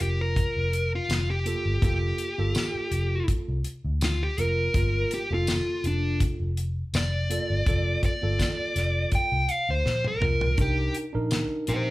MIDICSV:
0, 0, Header, 1, 6, 480
1, 0, Start_track
1, 0, Key_signature, -2, "minor"
1, 0, Tempo, 729927
1, 1200, Time_signature, 4, 2, 24, 8
1, 7828, End_track
2, 0, Start_track
2, 0, Title_t, "Lead electric guitar"
2, 0, Program_c, 0, 29
2, 13, Note_on_c, 0, 67, 72
2, 132, Note_off_c, 0, 67, 0
2, 140, Note_on_c, 0, 70, 77
2, 600, Note_off_c, 0, 70, 0
2, 627, Note_on_c, 0, 65, 70
2, 851, Note_off_c, 0, 65, 0
2, 858, Note_on_c, 0, 67, 81
2, 1194, Note_off_c, 0, 67, 0
2, 1213, Note_on_c, 0, 67, 85
2, 2140, Note_off_c, 0, 67, 0
2, 2660, Note_on_c, 0, 65, 90
2, 2776, Note_off_c, 0, 65, 0
2, 2782, Note_on_c, 0, 67, 78
2, 2899, Note_off_c, 0, 67, 0
2, 2899, Note_on_c, 0, 70, 79
2, 3355, Note_off_c, 0, 70, 0
2, 3380, Note_on_c, 0, 67, 70
2, 3496, Note_off_c, 0, 67, 0
2, 3512, Note_on_c, 0, 65, 82
2, 3841, Note_off_c, 0, 65, 0
2, 3860, Note_on_c, 0, 62, 80
2, 4083, Note_off_c, 0, 62, 0
2, 4576, Note_on_c, 0, 74, 89
2, 5266, Note_off_c, 0, 74, 0
2, 5297, Note_on_c, 0, 74, 70
2, 5986, Note_off_c, 0, 74, 0
2, 6017, Note_on_c, 0, 79, 80
2, 6256, Note_off_c, 0, 79, 0
2, 6256, Note_on_c, 0, 77, 73
2, 6372, Note_off_c, 0, 77, 0
2, 6382, Note_on_c, 0, 72, 82
2, 6607, Note_off_c, 0, 72, 0
2, 6625, Note_on_c, 0, 70, 79
2, 6956, Note_off_c, 0, 70, 0
2, 6978, Note_on_c, 0, 67, 90
2, 7200, Note_off_c, 0, 67, 0
2, 7685, Note_on_c, 0, 67, 78
2, 7690, Note_on_c, 0, 72, 85
2, 7828, Note_off_c, 0, 67, 0
2, 7828, Note_off_c, 0, 72, 0
2, 7828, End_track
3, 0, Start_track
3, 0, Title_t, "Tine electric piano"
3, 0, Program_c, 1, 4
3, 0, Note_on_c, 1, 58, 68
3, 0, Note_on_c, 1, 65, 60
3, 0, Note_on_c, 1, 70, 71
3, 429, Note_off_c, 1, 58, 0
3, 431, Note_off_c, 1, 65, 0
3, 435, Note_off_c, 1, 70, 0
3, 957, Note_on_c, 1, 58, 68
3, 960, Note_on_c, 1, 65, 64
3, 966, Note_on_c, 1, 69, 74
3, 1159, Note_off_c, 1, 58, 0
3, 1161, Note_off_c, 1, 65, 0
3, 1164, Note_off_c, 1, 69, 0
3, 1196, Note_on_c, 1, 58, 71
3, 1204, Note_on_c, 1, 65, 61
3, 1206, Note_on_c, 1, 69, 76
3, 1498, Note_off_c, 1, 58, 0
3, 1503, Note_off_c, 1, 65, 0
3, 1504, Note_off_c, 1, 69, 0
3, 1564, Note_on_c, 1, 58, 68
3, 1569, Note_on_c, 1, 65, 64
3, 1575, Note_on_c, 1, 69, 80
3, 2351, Note_off_c, 1, 58, 0
3, 2354, Note_off_c, 1, 65, 0
3, 2357, Note_off_c, 1, 69, 0
3, 2880, Note_on_c, 1, 58, 68
3, 2883, Note_on_c, 1, 65, 58
3, 2889, Note_on_c, 1, 70, 75
3, 3081, Note_off_c, 1, 58, 0
3, 3083, Note_off_c, 1, 65, 0
3, 3085, Note_off_c, 1, 70, 0
3, 3117, Note_on_c, 1, 58, 66
3, 3126, Note_on_c, 1, 65, 64
3, 3132, Note_on_c, 1, 70, 71
3, 3419, Note_off_c, 1, 58, 0
3, 3424, Note_off_c, 1, 65, 0
3, 3427, Note_off_c, 1, 70, 0
3, 3490, Note_on_c, 1, 58, 63
3, 3495, Note_on_c, 1, 65, 64
3, 3503, Note_on_c, 1, 69, 74
3, 4274, Note_off_c, 1, 58, 0
3, 4276, Note_off_c, 1, 65, 0
3, 4280, Note_off_c, 1, 69, 0
3, 4799, Note_on_c, 1, 58, 68
3, 4803, Note_on_c, 1, 65, 62
3, 4809, Note_on_c, 1, 69, 70
3, 5000, Note_off_c, 1, 58, 0
3, 5002, Note_off_c, 1, 65, 0
3, 5005, Note_off_c, 1, 69, 0
3, 5042, Note_on_c, 1, 58, 65
3, 5051, Note_on_c, 1, 65, 60
3, 5053, Note_on_c, 1, 69, 80
3, 5341, Note_off_c, 1, 58, 0
3, 5345, Note_off_c, 1, 65, 0
3, 5346, Note_off_c, 1, 69, 0
3, 5403, Note_on_c, 1, 58, 62
3, 5411, Note_on_c, 1, 65, 59
3, 5414, Note_on_c, 1, 69, 77
3, 6189, Note_off_c, 1, 58, 0
3, 6193, Note_off_c, 1, 65, 0
3, 6195, Note_off_c, 1, 69, 0
3, 6712, Note_on_c, 1, 58, 67
3, 6717, Note_on_c, 1, 65, 55
3, 6722, Note_on_c, 1, 70, 77
3, 6915, Note_off_c, 1, 58, 0
3, 6918, Note_off_c, 1, 65, 0
3, 6920, Note_off_c, 1, 70, 0
3, 6953, Note_on_c, 1, 62, 66
3, 6958, Note_on_c, 1, 63, 58
3, 6965, Note_on_c, 1, 70, 74
3, 7255, Note_off_c, 1, 62, 0
3, 7257, Note_off_c, 1, 63, 0
3, 7261, Note_off_c, 1, 70, 0
3, 7319, Note_on_c, 1, 62, 79
3, 7327, Note_on_c, 1, 63, 73
3, 7331, Note_on_c, 1, 70, 91
3, 7828, Note_off_c, 1, 62, 0
3, 7828, Note_off_c, 1, 63, 0
3, 7828, Note_off_c, 1, 70, 0
3, 7828, End_track
4, 0, Start_track
4, 0, Title_t, "Fingered electric bass"
4, 0, Program_c, 2, 33
4, 4, Note_on_c, 2, 29, 91
4, 296, Note_off_c, 2, 29, 0
4, 370, Note_on_c, 2, 29, 78
4, 649, Note_off_c, 2, 29, 0
4, 716, Note_on_c, 2, 29, 84
4, 1011, Note_off_c, 2, 29, 0
4, 1088, Note_on_c, 2, 31, 86
4, 1177, Note_off_c, 2, 31, 0
4, 1198, Note_on_c, 2, 29, 97
4, 1390, Note_off_c, 2, 29, 0
4, 1568, Note_on_c, 2, 31, 81
4, 1657, Note_off_c, 2, 31, 0
4, 1916, Note_on_c, 2, 29, 89
4, 2108, Note_off_c, 2, 29, 0
4, 2290, Note_on_c, 2, 36, 81
4, 2378, Note_off_c, 2, 36, 0
4, 2528, Note_on_c, 2, 38, 74
4, 2808, Note_off_c, 2, 38, 0
4, 2879, Note_on_c, 2, 29, 82
4, 3071, Note_off_c, 2, 29, 0
4, 3122, Note_on_c, 2, 31, 104
4, 3312, Note_off_c, 2, 31, 0
4, 3487, Note_on_c, 2, 29, 83
4, 3679, Note_off_c, 2, 29, 0
4, 3838, Note_on_c, 2, 29, 92
4, 4132, Note_off_c, 2, 29, 0
4, 4207, Note_on_c, 2, 29, 76
4, 4487, Note_off_c, 2, 29, 0
4, 4560, Note_on_c, 2, 29, 87
4, 4853, Note_off_c, 2, 29, 0
4, 4932, Note_on_c, 2, 31, 80
4, 5019, Note_off_c, 2, 31, 0
4, 5042, Note_on_c, 2, 29, 98
4, 5232, Note_off_c, 2, 29, 0
4, 5411, Note_on_c, 2, 31, 86
4, 5498, Note_off_c, 2, 31, 0
4, 5758, Note_on_c, 2, 29, 82
4, 5949, Note_off_c, 2, 29, 0
4, 6128, Note_on_c, 2, 36, 72
4, 6216, Note_off_c, 2, 36, 0
4, 6371, Note_on_c, 2, 38, 74
4, 6457, Note_off_c, 2, 38, 0
4, 6481, Note_on_c, 2, 34, 77
4, 6695, Note_off_c, 2, 34, 0
4, 6714, Note_on_c, 2, 36, 78
4, 6931, Note_off_c, 2, 36, 0
4, 6960, Note_on_c, 2, 36, 94
4, 7149, Note_off_c, 2, 36, 0
4, 7330, Note_on_c, 2, 34, 84
4, 7518, Note_off_c, 2, 34, 0
4, 7682, Note_on_c, 2, 34, 93
4, 7828, Note_off_c, 2, 34, 0
4, 7828, End_track
5, 0, Start_track
5, 0, Title_t, "Muted fingered electric bass strokes"
5, 1805, Note_on_c, 9, 29, 36
5, 1871, Note_off_c, 9, 29, 0
5, 5651, Note_on_c, 9, 29, 34
5, 5716, Note_off_c, 9, 29, 0
5, 7828, End_track
6, 0, Start_track
6, 0, Title_t, "Drums"
6, 0, Note_on_c, 9, 42, 62
6, 66, Note_off_c, 9, 42, 0
6, 239, Note_on_c, 9, 36, 87
6, 243, Note_on_c, 9, 42, 81
6, 305, Note_off_c, 9, 36, 0
6, 308, Note_off_c, 9, 42, 0
6, 482, Note_on_c, 9, 42, 57
6, 548, Note_off_c, 9, 42, 0
6, 721, Note_on_c, 9, 42, 74
6, 721, Note_on_c, 9, 54, 99
6, 729, Note_on_c, 9, 38, 104
6, 787, Note_off_c, 9, 42, 0
6, 787, Note_off_c, 9, 54, 0
6, 794, Note_off_c, 9, 38, 0
6, 960, Note_on_c, 9, 42, 57
6, 1025, Note_off_c, 9, 42, 0
6, 1198, Note_on_c, 9, 36, 110
6, 1200, Note_on_c, 9, 42, 77
6, 1264, Note_off_c, 9, 36, 0
6, 1266, Note_off_c, 9, 42, 0
6, 1436, Note_on_c, 9, 42, 55
6, 1502, Note_off_c, 9, 42, 0
6, 1675, Note_on_c, 9, 42, 75
6, 1675, Note_on_c, 9, 54, 103
6, 1683, Note_on_c, 9, 38, 102
6, 1741, Note_off_c, 9, 42, 0
6, 1741, Note_off_c, 9, 54, 0
6, 1748, Note_off_c, 9, 38, 0
6, 1917, Note_on_c, 9, 42, 55
6, 1983, Note_off_c, 9, 42, 0
6, 2158, Note_on_c, 9, 36, 83
6, 2158, Note_on_c, 9, 42, 77
6, 2224, Note_off_c, 9, 36, 0
6, 2224, Note_off_c, 9, 42, 0
6, 2397, Note_on_c, 9, 42, 54
6, 2463, Note_off_c, 9, 42, 0
6, 2639, Note_on_c, 9, 42, 78
6, 2639, Note_on_c, 9, 54, 98
6, 2646, Note_on_c, 9, 38, 100
6, 2704, Note_off_c, 9, 42, 0
6, 2704, Note_off_c, 9, 54, 0
6, 2712, Note_off_c, 9, 38, 0
6, 2880, Note_on_c, 9, 42, 56
6, 2945, Note_off_c, 9, 42, 0
6, 3119, Note_on_c, 9, 36, 105
6, 3119, Note_on_c, 9, 42, 75
6, 3184, Note_off_c, 9, 42, 0
6, 3185, Note_off_c, 9, 36, 0
6, 3360, Note_on_c, 9, 42, 58
6, 3426, Note_off_c, 9, 42, 0
6, 3599, Note_on_c, 9, 42, 78
6, 3599, Note_on_c, 9, 54, 107
6, 3606, Note_on_c, 9, 38, 106
6, 3665, Note_off_c, 9, 42, 0
6, 3665, Note_off_c, 9, 54, 0
6, 3672, Note_off_c, 9, 38, 0
6, 3841, Note_on_c, 9, 42, 57
6, 3907, Note_off_c, 9, 42, 0
6, 4080, Note_on_c, 9, 36, 85
6, 4080, Note_on_c, 9, 42, 89
6, 4146, Note_off_c, 9, 36, 0
6, 4146, Note_off_c, 9, 42, 0
6, 4323, Note_on_c, 9, 42, 56
6, 4389, Note_off_c, 9, 42, 0
6, 4562, Note_on_c, 9, 42, 77
6, 4562, Note_on_c, 9, 54, 99
6, 4569, Note_on_c, 9, 38, 102
6, 4628, Note_off_c, 9, 42, 0
6, 4628, Note_off_c, 9, 54, 0
6, 4635, Note_off_c, 9, 38, 0
6, 4804, Note_on_c, 9, 42, 67
6, 4870, Note_off_c, 9, 42, 0
6, 5040, Note_on_c, 9, 36, 103
6, 5041, Note_on_c, 9, 42, 76
6, 5106, Note_off_c, 9, 36, 0
6, 5106, Note_off_c, 9, 42, 0
6, 5280, Note_on_c, 9, 36, 80
6, 5281, Note_on_c, 9, 42, 62
6, 5345, Note_off_c, 9, 36, 0
6, 5347, Note_off_c, 9, 42, 0
6, 5519, Note_on_c, 9, 36, 69
6, 5521, Note_on_c, 9, 42, 77
6, 5521, Note_on_c, 9, 54, 99
6, 5528, Note_on_c, 9, 38, 103
6, 5585, Note_off_c, 9, 36, 0
6, 5587, Note_off_c, 9, 42, 0
6, 5587, Note_off_c, 9, 54, 0
6, 5594, Note_off_c, 9, 38, 0
6, 5760, Note_on_c, 9, 42, 61
6, 5767, Note_on_c, 9, 38, 30
6, 5826, Note_off_c, 9, 42, 0
6, 5833, Note_off_c, 9, 38, 0
6, 5995, Note_on_c, 9, 42, 78
6, 5997, Note_on_c, 9, 36, 86
6, 6061, Note_off_c, 9, 42, 0
6, 6063, Note_off_c, 9, 36, 0
6, 6238, Note_on_c, 9, 42, 56
6, 6304, Note_off_c, 9, 42, 0
6, 6483, Note_on_c, 9, 38, 59
6, 6549, Note_off_c, 9, 38, 0
6, 6606, Note_on_c, 9, 48, 61
6, 6671, Note_off_c, 9, 48, 0
6, 6719, Note_on_c, 9, 45, 85
6, 6784, Note_off_c, 9, 45, 0
6, 6848, Note_on_c, 9, 43, 93
6, 6913, Note_off_c, 9, 43, 0
6, 6955, Note_on_c, 9, 42, 74
6, 6957, Note_on_c, 9, 36, 100
6, 7021, Note_off_c, 9, 42, 0
6, 7023, Note_off_c, 9, 36, 0
6, 7197, Note_on_c, 9, 42, 59
6, 7263, Note_off_c, 9, 42, 0
6, 7436, Note_on_c, 9, 42, 71
6, 7436, Note_on_c, 9, 54, 103
6, 7443, Note_on_c, 9, 38, 105
6, 7502, Note_off_c, 9, 42, 0
6, 7502, Note_off_c, 9, 54, 0
6, 7509, Note_off_c, 9, 38, 0
6, 7675, Note_on_c, 9, 42, 61
6, 7741, Note_off_c, 9, 42, 0
6, 7828, End_track
0, 0, End_of_file